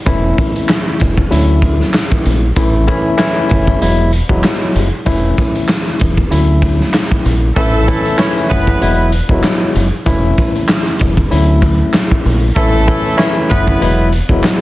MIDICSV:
0, 0, Header, 1, 5, 480
1, 0, Start_track
1, 0, Key_signature, 3, "major"
1, 0, Tempo, 625000
1, 47, Time_signature, 4, 2, 24, 8
1, 11220, End_track
2, 0, Start_track
2, 0, Title_t, "Horn section"
2, 0, Program_c, 0, 61
2, 5803, Note_on_c, 0, 57, 120
2, 5803, Note_on_c, 0, 69, 116
2, 6256, Note_off_c, 0, 57, 0
2, 6256, Note_off_c, 0, 69, 0
2, 6288, Note_on_c, 0, 61, 89
2, 6288, Note_on_c, 0, 73, 88
2, 6395, Note_off_c, 0, 61, 0
2, 6395, Note_off_c, 0, 73, 0
2, 6519, Note_on_c, 0, 59, 88
2, 6520, Note_on_c, 0, 71, 104
2, 6974, Note_off_c, 0, 59, 0
2, 6974, Note_off_c, 0, 71, 0
2, 9643, Note_on_c, 0, 57, 125
2, 9643, Note_on_c, 0, 69, 127
2, 10096, Note_off_c, 0, 57, 0
2, 10096, Note_off_c, 0, 69, 0
2, 10121, Note_on_c, 0, 61, 91
2, 10121, Note_on_c, 0, 73, 94
2, 10231, Note_off_c, 0, 61, 0
2, 10231, Note_off_c, 0, 73, 0
2, 10363, Note_on_c, 0, 71, 103
2, 10364, Note_on_c, 0, 59, 90
2, 10816, Note_off_c, 0, 59, 0
2, 10816, Note_off_c, 0, 71, 0
2, 11220, End_track
3, 0, Start_track
3, 0, Title_t, "Tine electric piano"
3, 0, Program_c, 1, 4
3, 42, Note_on_c, 1, 52, 97
3, 44, Note_on_c, 1, 57, 93
3, 45, Note_on_c, 1, 61, 94
3, 47, Note_on_c, 1, 64, 116
3, 937, Note_off_c, 1, 52, 0
3, 938, Note_off_c, 1, 57, 0
3, 938, Note_off_c, 1, 61, 0
3, 940, Note_off_c, 1, 64, 0
3, 1001, Note_on_c, 1, 38, 99
3, 1002, Note_on_c, 1, 54, 82
3, 1004, Note_on_c, 1, 57, 89
3, 1005, Note_on_c, 1, 61, 82
3, 1006, Note_on_c, 1, 64, 110
3, 1896, Note_off_c, 1, 38, 0
3, 1897, Note_off_c, 1, 54, 0
3, 1898, Note_off_c, 1, 57, 0
3, 1898, Note_off_c, 1, 61, 0
3, 1899, Note_off_c, 1, 64, 0
3, 1968, Note_on_c, 1, 52, 102
3, 1969, Note_on_c, 1, 57, 95
3, 1972, Note_on_c, 1, 61, 85
3, 1974, Note_on_c, 1, 64, 108
3, 2190, Note_off_c, 1, 52, 0
3, 2191, Note_off_c, 1, 57, 0
3, 2192, Note_off_c, 1, 61, 0
3, 2193, Note_off_c, 1, 64, 0
3, 2202, Note_on_c, 1, 52, 94
3, 2204, Note_on_c, 1, 57, 90
3, 2206, Note_on_c, 1, 61, 95
3, 2207, Note_on_c, 1, 64, 101
3, 2426, Note_off_c, 1, 52, 0
3, 2427, Note_off_c, 1, 57, 0
3, 2430, Note_off_c, 1, 61, 0
3, 2430, Note_off_c, 1, 64, 0
3, 2435, Note_on_c, 1, 52, 90
3, 2436, Note_on_c, 1, 57, 90
3, 2438, Note_on_c, 1, 61, 97
3, 2440, Note_on_c, 1, 64, 116
3, 2921, Note_off_c, 1, 52, 0
3, 2921, Note_off_c, 1, 57, 0
3, 2922, Note_off_c, 1, 61, 0
3, 2923, Note_off_c, 1, 64, 0
3, 2929, Note_on_c, 1, 54, 95
3, 2931, Note_on_c, 1, 56, 84
3, 2932, Note_on_c, 1, 59, 91
3, 2934, Note_on_c, 1, 64, 101
3, 3151, Note_off_c, 1, 54, 0
3, 3152, Note_off_c, 1, 56, 0
3, 3152, Note_off_c, 1, 59, 0
3, 3154, Note_off_c, 1, 64, 0
3, 3301, Note_on_c, 1, 54, 107
3, 3303, Note_on_c, 1, 56, 90
3, 3305, Note_on_c, 1, 59, 99
3, 3306, Note_on_c, 1, 64, 109
3, 3738, Note_off_c, 1, 54, 0
3, 3739, Note_off_c, 1, 56, 0
3, 3740, Note_off_c, 1, 59, 0
3, 3741, Note_off_c, 1, 64, 0
3, 3883, Note_on_c, 1, 52, 96
3, 3884, Note_on_c, 1, 57, 88
3, 3886, Note_on_c, 1, 61, 92
3, 3888, Note_on_c, 1, 64, 118
3, 4777, Note_off_c, 1, 52, 0
3, 4778, Note_off_c, 1, 57, 0
3, 4779, Note_off_c, 1, 61, 0
3, 4780, Note_off_c, 1, 64, 0
3, 4842, Note_on_c, 1, 38, 96
3, 4844, Note_on_c, 1, 54, 80
3, 4845, Note_on_c, 1, 57, 85
3, 4846, Note_on_c, 1, 61, 83
3, 4848, Note_on_c, 1, 64, 110
3, 5737, Note_off_c, 1, 38, 0
3, 5738, Note_off_c, 1, 54, 0
3, 5738, Note_off_c, 1, 57, 0
3, 5739, Note_off_c, 1, 61, 0
3, 5740, Note_off_c, 1, 64, 0
3, 5809, Note_on_c, 1, 52, 100
3, 5811, Note_on_c, 1, 57, 93
3, 5813, Note_on_c, 1, 61, 86
3, 5815, Note_on_c, 1, 64, 112
3, 6031, Note_off_c, 1, 52, 0
3, 6032, Note_off_c, 1, 57, 0
3, 6033, Note_off_c, 1, 61, 0
3, 6034, Note_off_c, 1, 64, 0
3, 6044, Note_on_c, 1, 52, 89
3, 6046, Note_on_c, 1, 57, 90
3, 6047, Note_on_c, 1, 61, 93
3, 6049, Note_on_c, 1, 64, 103
3, 6266, Note_off_c, 1, 52, 0
3, 6269, Note_off_c, 1, 57, 0
3, 6270, Note_off_c, 1, 61, 0
3, 6271, Note_off_c, 1, 64, 0
3, 6276, Note_on_c, 1, 52, 88
3, 6277, Note_on_c, 1, 57, 86
3, 6279, Note_on_c, 1, 61, 95
3, 6280, Note_on_c, 1, 64, 112
3, 6761, Note_off_c, 1, 52, 0
3, 6762, Note_off_c, 1, 57, 0
3, 6763, Note_off_c, 1, 61, 0
3, 6764, Note_off_c, 1, 64, 0
3, 6769, Note_on_c, 1, 54, 93
3, 6771, Note_on_c, 1, 56, 84
3, 6773, Note_on_c, 1, 59, 92
3, 6774, Note_on_c, 1, 64, 102
3, 6991, Note_off_c, 1, 54, 0
3, 6992, Note_off_c, 1, 56, 0
3, 6993, Note_off_c, 1, 59, 0
3, 6994, Note_off_c, 1, 64, 0
3, 7143, Note_on_c, 1, 54, 106
3, 7145, Note_on_c, 1, 56, 89
3, 7147, Note_on_c, 1, 59, 98
3, 7148, Note_on_c, 1, 64, 104
3, 7579, Note_off_c, 1, 54, 0
3, 7580, Note_off_c, 1, 56, 0
3, 7581, Note_off_c, 1, 59, 0
3, 7582, Note_off_c, 1, 64, 0
3, 7721, Note_on_c, 1, 52, 92
3, 7723, Note_on_c, 1, 57, 92
3, 7724, Note_on_c, 1, 61, 95
3, 7726, Note_on_c, 1, 64, 116
3, 8617, Note_off_c, 1, 52, 0
3, 8617, Note_off_c, 1, 57, 0
3, 8618, Note_off_c, 1, 61, 0
3, 8619, Note_off_c, 1, 64, 0
3, 8682, Note_on_c, 1, 38, 98
3, 8683, Note_on_c, 1, 54, 79
3, 8685, Note_on_c, 1, 57, 90
3, 8686, Note_on_c, 1, 61, 82
3, 8686, Note_on_c, 1, 64, 109
3, 9577, Note_off_c, 1, 38, 0
3, 9577, Note_off_c, 1, 54, 0
3, 9578, Note_off_c, 1, 57, 0
3, 9579, Note_off_c, 1, 61, 0
3, 9579, Note_off_c, 1, 64, 0
3, 9649, Note_on_c, 1, 52, 103
3, 9651, Note_on_c, 1, 57, 91
3, 9652, Note_on_c, 1, 61, 88
3, 9654, Note_on_c, 1, 64, 108
3, 9871, Note_off_c, 1, 52, 0
3, 9872, Note_off_c, 1, 57, 0
3, 9872, Note_off_c, 1, 61, 0
3, 9873, Note_off_c, 1, 64, 0
3, 9884, Note_on_c, 1, 52, 90
3, 9885, Note_on_c, 1, 57, 92
3, 9887, Note_on_c, 1, 61, 94
3, 9888, Note_on_c, 1, 64, 106
3, 10106, Note_off_c, 1, 52, 0
3, 10107, Note_off_c, 1, 57, 0
3, 10110, Note_off_c, 1, 61, 0
3, 10111, Note_off_c, 1, 64, 0
3, 10115, Note_on_c, 1, 52, 92
3, 10116, Note_on_c, 1, 57, 92
3, 10118, Note_on_c, 1, 61, 94
3, 10119, Note_on_c, 1, 64, 112
3, 10601, Note_off_c, 1, 52, 0
3, 10601, Note_off_c, 1, 57, 0
3, 10602, Note_off_c, 1, 61, 0
3, 10603, Note_off_c, 1, 64, 0
3, 10609, Note_on_c, 1, 54, 94
3, 10610, Note_on_c, 1, 56, 83
3, 10612, Note_on_c, 1, 59, 91
3, 10614, Note_on_c, 1, 64, 101
3, 10831, Note_off_c, 1, 54, 0
3, 10832, Note_off_c, 1, 56, 0
3, 10833, Note_off_c, 1, 59, 0
3, 10833, Note_off_c, 1, 64, 0
3, 10982, Note_on_c, 1, 54, 105
3, 10983, Note_on_c, 1, 56, 92
3, 10985, Note_on_c, 1, 59, 98
3, 10987, Note_on_c, 1, 64, 105
3, 11220, Note_off_c, 1, 54, 0
3, 11220, Note_off_c, 1, 56, 0
3, 11220, Note_off_c, 1, 59, 0
3, 11220, Note_off_c, 1, 64, 0
3, 11220, End_track
4, 0, Start_track
4, 0, Title_t, "Fingered electric bass"
4, 0, Program_c, 2, 33
4, 53, Note_on_c, 2, 28, 101
4, 240, Note_off_c, 2, 28, 0
4, 781, Note_on_c, 2, 28, 90
4, 965, Note_off_c, 2, 28, 0
4, 1014, Note_on_c, 2, 38, 104
4, 1391, Note_off_c, 2, 38, 0
4, 1735, Note_on_c, 2, 34, 102
4, 1922, Note_off_c, 2, 34, 0
4, 1972, Note_on_c, 2, 33, 106
4, 2267, Note_off_c, 2, 33, 0
4, 2701, Note_on_c, 2, 30, 98
4, 2885, Note_off_c, 2, 30, 0
4, 2933, Note_on_c, 2, 28, 110
4, 3227, Note_off_c, 2, 28, 0
4, 3299, Note_on_c, 2, 28, 88
4, 3384, Note_off_c, 2, 28, 0
4, 3653, Note_on_c, 2, 30, 96
4, 3757, Note_off_c, 2, 30, 0
4, 3892, Note_on_c, 2, 28, 100
4, 4080, Note_off_c, 2, 28, 0
4, 4620, Note_on_c, 2, 28, 93
4, 4805, Note_off_c, 2, 28, 0
4, 4853, Note_on_c, 2, 38, 106
4, 5230, Note_off_c, 2, 38, 0
4, 5573, Note_on_c, 2, 34, 97
4, 5760, Note_off_c, 2, 34, 0
4, 5812, Note_on_c, 2, 33, 109
4, 6107, Note_off_c, 2, 33, 0
4, 6540, Note_on_c, 2, 30, 99
4, 6725, Note_off_c, 2, 30, 0
4, 6774, Note_on_c, 2, 28, 106
4, 7068, Note_off_c, 2, 28, 0
4, 7139, Note_on_c, 2, 28, 91
4, 7223, Note_off_c, 2, 28, 0
4, 7494, Note_on_c, 2, 30, 97
4, 7598, Note_off_c, 2, 30, 0
4, 7731, Note_on_c, 2, 28, 104
4, 7919, Note_off_c, 2, 28, 0
4, 8459, Note_on_c, 2, 28, 96
4, 8644, Note_off_c, 2, 28, 0
4, 8694, Note_on_c, 2, 38, 102
4, 9071, Note_off_c, 2, 38, 0
4, 9413, Note_on_c, 2, 34, 101
4, 9600, Note_off_c, 2, 34, 0
4, 9651, Note_on_c, 2, 33, 106
4, 9946, Note_off_c, 2, 33, 0
4, 10380, Note_on_c, 2, 30, 100
4, 10565, Note_off_c, 2, 30, 0
4, 10612, Note_on_c, 2, 28, 108
4, 10907, Note_off_c, 2, 28, 0
4, 10979, Note_on_c, 2, 28, 91
4, 11063, Note_off_c, 2, 28, 0
4, 11220, End_track
5, 0, Start_track
5, 0, Title_t, "Drums"
5, 49, Note_on_c, 9, 42, 106
5, 50, Note_on_c, 9, 36, 115
5, 126, Note_off_c, 9, 36, 0
5, 126, Note_off_c, 9, 42, 0
5, 292, Note_on_c, 9, 42, 77
5, 294, Note_on_c, 9, 36, 107
5, 369, Note_off_c, 9, 42, 0
5, 371, Note_off_c, 9, 36, 0
5, 428, Note_on_c, 9, 42, 62
5, 505, Note_off_c, 9, 42, 0
5, 527, Note_on_c, 9, 39, 94
5, 532, Note_on_c, 9, 38, 123
5, 533, Note_on_c, 9, 42, 111
5, 604, Note_off_c, 9, 39, 0
5, 609, Note_off_c, 9, 38, 0
5, 610, Note_off_c, 9, 42, 0
5, 764, Note_on_c, 9, 42, 89
5, 778, Note_on_c, 9, 36, 103
5, 841, Note_off_c, 9, 42, 0
5, 855, Note_off_c, 9, 36, 0
5, 902, Note_on_c, 9, 36, 94
5, 979, Note_off_c, 9, 36, 0
5, 1014, Note_on_c, 9, 42, 92
5, 1090, Note_off_c, 9, 42, 0
5, 1245, Note_on_c, 9, 36, 94
5, 1248, Note_on_c, 9, 42, 76
5, 1322, Note_off_c, 9, 36, 0
5, 1324, Note_off_c, 9, 42, 0
5, 1386, Note_on_c, 9, 38, 36
5, 1463, Note_off_c, 9, 38, 0
5, 1487, Note_on_c, 9, 39, 92
5, 1493, Note_on_c, 9, 38, 119
5, 1499, Note_on_c, 9, 42, 108
5, 1564, Note_off_c, 9, 39, 0
5, 1570, Note_off_c, 9, 38, 0
5, 1575, Note_off_c, 9, 42, 0
5, 1622, Note_on_c, 9, 42, 58
5, 1625, Note_on_c, 9, 36, 95
5, 1699, Note_off_c, 9, 42, 0
5, 1702, Note_off_c, 9, 36, 0
5, 1731, Note_on_c, 9, 42, 86
5, 1808, Note_off_c, 9, 42, 0
5, 1967, Note_on_c, 9, 42, 99
5, 1969, Note_on_c, 9, 36, 115
5, 2044, Note_off_c, 9, 42, 0
5, 2046, Note_off_c, 9, 36, 0
5, 2209, Note_on_c, 9, 42, 78
5, 2214, Note_on_c, 9, 36, 106
5, 2286, Note_off_c, 9, 42, 0
5, 2290, Note_off_c, 9, 36, 0
5, 2446, Note_on_c, 9, 39, 99
5, 2451, Note_on_c, 9, 38, 126
5, 2452, Note_on_c, 9, 42, 113
5, 2523, Note_off_c, 9, 39, 0
5, 2528, Note_off_c, 9, 38, 0
5, 2529, Note_off_c, 9, 42, 0
5, 2684, Note_on_c, 9, 42, 88
5, 2698, Note_on_c, 9, 36, 103
5, 2760, Note_off_c, 9, 42, 0
5, 2775, Note_off_c, 9, 36, 0
5, 2822, Note_on_c, 9, 36, 92
5, 2899, Note_off_c, 9, 36, 0
5, 2933, Note_on_c, 9, 42, 94
5, 3009, Note_off_c, 9, 42, 0
5, 3168, Note_on_c, 9, 42, 76
5, 3245, Note_off_c, 9, 42, 0
5, 3297, Note_on_c, 9, 36, 104
5, 3374, Note_off_c, 9, 36, 0
5, 3407, Note_on_c, 9, 39, 93
5, 3412, Note_on_c, 9, 38, 113
5, 3418, Note_on_c, 9, 42, 106
5, 3484, Note_off_c, 9, 39, 0
5, 3489, Note_off_c, 9, 38, 0
5, 3495, Note_off_c, 9, 42, 0
5, 3542, Note_on_c, 9, 42, 58
5, 3619, Note_off_c, 9, 42, 0
5, 3652, Note_on_c, 9, 42, 85
5, 3728, Note_off_c, 9, 42, 0
5, 3887, Note_on_c, 9, 42, 104
5, 3889, Note_on_c, 9, 36, 115
5, 3964, Note_off_c, 9, 42, 0
5, 3966, Note_off_c, 9, 36, 0
5, 4129, Note_on_c, 9, 42, 76
5, 4133, Note_on_c, 9, 36, 105
5, 4206, Note_off_c, 9, 42, 0
5, 4210, Note_off_c, 9, 36, 0
5, 4265, Note_on_c, 9, 42, 65
5, 4342, Note_off_c, 9, 42, 0
5, 4365, Note_on_c, 9, 39, 96
5, 4371, Note_on_c, 9, 38, 120
5, 4372, Note_on_c, 9, 42, 113
5, 4442, Note_off_c, 9, 39, 0
5, 4448, Note_off_c, 9, 38, 0
5, 4448, Note_off_c, 9, 42, 0
5, 4511, Note_on_c, 9, 42, 58
5, 4587, Note_off_c, 9, 42, 0
5, 4603, Note_on_c, 9, 42, 87
5, 4617, Note_on_c, 9, 36, 104
5, 4680, Note_off_c, 9, 42, 0
5, 4694, Note_off_c, 9, 36, 0
5, 4741, Note_on_c, 9, 36, 92
5, 4818, Note_off_c, 9, 36, 0
5, 4852, Note_on_c, 9, 42, 95
5, 4929, Note_off_c, 9, 42, 0
5, 5085, Note_on_c, 9, 36, 93
5, 5087, Note_on_c, 9, 42, 77
5, 5162, Note_off_c, 9, 36, 0
5, 5164, Note_off_c, 9, 42, 0
5, 5225, Note_on_c, 9, 38, 37
5, 5302, Note_off_c, 9, 38, 0
5, 5326, Note_on_c, 9, 39, 92
5, 5332, Note_on_c, 9, 38, 115
5, 5338, Note_on_c, 9, 42, 109
5, 5403, Note_off_c, 9, 39, 0
5, 5409, Note_off_c, 9, 38, 0
5, 5415, Note_off_c, 9, 42, 0
5, 5462, Note_on_c, 9, 42, 58
5, 5465, Note_on_c, 9, 36, 95
5, 5538, Note_off_c, 9, 42, 0
5, 5542, Note_off_c, 9, 36, 0
5, 5573, Note_on_c, 9, 42, 84
5, 5649, Note_off_c, 9, 42, 0
5, 5807, Note_on_c, 9, 42, 103
5, 5809, Note_on_c, 9, 36, 116
5, 5884, Note_off_c, 9, 42, 0
5, 5886, Note_off_c, 9, 36, 0
5, 6050, Note_on_c, 9, 42, 77
5, 6054, Note_on_c, 9, 36, 104
5, 6127, Note_off_c, 9, 42, 0
5, 6131, Note_off_c, 9, 36, 0
5, 6185, Note_on_c, 9, 42, 63
5, 6262, Note_off_c, 9, 42, 0
5, 6286, Note_on_c, 9, 39, 99
5, 6291, Note_on_c, 9, 38, 124
5, 6292, Note_on_c, 9, 42, 115
5, 6362, Note_off_c, 9, 39, 0
5, 6368, Note_off_c, 9, 38, 0
5, 6369, Note_off_c, 9, 42, 0
5, 6432, Note_on_c, 9, 42, 60
5, 6509, Note_off_c, 9, 42, 0
5, 6523, Note_on_c, 9, 42, 87
5, 6537, Note_on_c, 9, 36, 103
5, 6600, Note_off_c, 9, 42, 0
5, 6614, Note_off_c, 9, 36, 0
5, 6661, Note_on_c, 9, 36, 89
5, 6738, Note_off_c, 9, 36, 0
5, 6771, Note_on_c, 9, 42, 94
5, 6848, Note_off_c, 9, 42, 0
5, 7006, Note_on_c, 9, 42, 76
5, 7083, Note_off_c, 9, 42, 0
5, 7135, Note_on_c, 9, 36, 100
5, 7212, Note_off_c, 9, 36, 0
5, 7245, Note_on_c, 9, 39, 92
5, 7251, Note_on_c, 9, 38, 113
5, 7256, Note_on_c, 9, 42, 104
5, 7322, Note_off_c, 9, 39, 0
5, 7327, Note_off_c, 9, 38, 0
5, 7333, Note_off_c, 9, 42, 0
5, 7491, Note_on_c, 9, 42, 83
5, 7568, Note_off_c, 9, 42, 0
5, 7725, Note_on_c, 9, 42, 102
5, 7728, Note_on_c, 9, 36, 116
5, 7802, Note_off_c, 9, 42, 0
5, 7805, Note_off_c, 9, 36, 0
5, 7969, Note_on_c, 9, 42, 78
5, 7973, Note_on_c, 9, 36, 107
5, 8046, Note_off_c, 9, 42, 0
5, 8050, Note_off_c, 9, 36, 0
5, 8105, Note_on_c, 9, 42, 63
5, 8182, Note_off_c, 9, 42, 0
5, 8206, Note_on_c, 9, 39, 101
5, 8211, Note_on_c, 9, 38, 123
5, 8212, Note_on_c, 9, 42, 110
5, 8282, Note_off_c, 9, 39, 0
5, 8288, Note_off_c, 9, 38, 0
5, 8289, Note_off_c, 9, 42, 0
5, 8351, Note_on_c, 9, 42, 61
5, 8428, Note_off_c, 9, 42, 0
5, 8442, Note_on_c, 9, 42, 89
5, 8456, Note_on_c, 9, 36, 102
5, 8518, Note_off_c, 9, 42, 0
5, 8533, Note_off_c, 9, 36, 0
5, 8580, Note_on_c, 9, 36, 95
5, 8657, Note_off_c, 9, 36, 0
5, 8690, Note_on_c, 9, 42, 93
5, 8767, Note_off_c, 9, 42, 0
5, 8924, Note_on_c, 9, 36, 96
5, 8926, Note_on_c, 9, 42, 73
5, 9001, Note_off_c, 9, 36, 0
5, 9003, Note_off_c, 9, 42, 0
5, 9165, Note_on_c, 9, 39, 92
5, 9171, Note_on_c, 9, 38, 117
5, 9177, Note_on_c, 9, 42, 106
5, 9242, Note_off_c, 9, 39, 0
5, 9248, Note_off_c, 9, 38, 0
5, 9253, Note_off_c, 9, 42, 0
5, 9304, Note_on_c, 9, 36, 100
5, 9380, Note_off_c, 9, 36, 0
5, 9411, Note_on_c, 9, 46, 61
5, 9487, Note_off_c, 9, 46, 0
5, 9645, Note_on_c, 9, 42, 101
5, 9648, Note_on_c, 9, 36, 117
5, 9722, Note_off_c, 9, 42, 0
5, 9725, Note_off_c, 9, 36, 0
5, 9889, Note_on_c, 9, 42, 79
5, 9893, Note_on_c, 9, 36, 103
5, 9966, Note_off_c, 9, 42, 0
5, 9969, Note_off_c, 9, 36, 0
5, 10024, Note_on_c, 9, 42, 62
5, 10101, Note_off_c, 9, 42, 0
5, 10125, Note_on_c, 9, 39, 99
5, 10131, Note_on_c, 9, 38, 127
5, 10132, Note_on_c, 9, 42, 113
5, 10202, Note_off_c, 9, 39, 0
5, 10208, Note_off_c, 9, 38, 0
5, 10208, Note_off_c, 9, 42, 0
5, 10363, Note_on_c, 9, 42, 91
5, 10377, Note_on_c, 9, 36, 101
5, 10440, Note_off_c, 9, 42, 0
5, 10454, Note_off_c, 9, 36, 0
5, 10501, Note_on_c, 9, 36, 89
5, 10578, Note_off_c, 9, 36, 0
5, 10612, Note_on_c, 9, 42, 92
5, 10689, Note_off_c, 9, 42, 0
5, 10847, Note_on_c, 9, 42, 76
5, 10924, Note_off_c, 9, 42, 0
5, 10976, Note_on_c, 9, 36, 101
5, 11053, Note_off_c, 9, 36, 0
5, 11086, Note_on_c, 9, 39, 90
5, 11092, Note_on_c, 9, 38, 119
5, 11098, Note_on_c, 9, 42, 106
5, 11163, Note_off_c, 9, 39, 0
5, 11169, Note_off_c, 9, 38, 0
5, 11174, Note_off_c, 9, 42, 0
5, 11220, End_track
0, 0, End_of_file